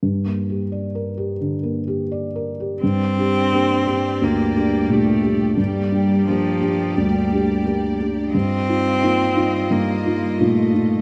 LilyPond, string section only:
\new Staff \with { instrumentName = "String section" } { \time 4/4 \key g \minor \tempo 4 = 87 r1 | <g g' d''>1 | <bes g' d''>1 | <g f' ees''>1 | }